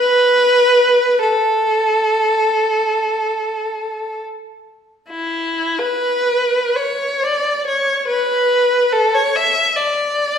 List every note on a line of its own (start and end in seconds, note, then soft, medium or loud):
0.00 1.18 B4 medium
1.22 4.21 A4 medium
5.11 5.78 E4 medium
5.79 6.77 B4 medium
6.76 7.21 C#5 medium
7.23 7.66 D5 medium
7.67 8.08 C#5 medium
8.08 8.90 B4 medium
8.93 9.13 A4 medium
9.15 9.35 C#5 medium
9.36 9.77 E5 medium
9.77 10.38 D5 medium